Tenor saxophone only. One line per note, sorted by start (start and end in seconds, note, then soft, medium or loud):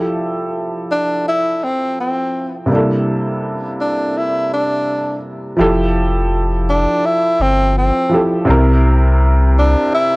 0.92 1.24 D4 medium
1.28 1.65 E4 loud
1.64 1.99 C4 medium
2.00 2.54 C4 medium
3.81 4.19 D4 medium
4.17 4.52 E4 loud
4.53 5.20 D4 medium
6.69 7.07 D4 medium
7.05 7.43 E4 loud
7.42 7.77 C4 medium
7.78 8.32 C4 medium
9.58 9.91 D4 medium
9.94 10.16 E4 loud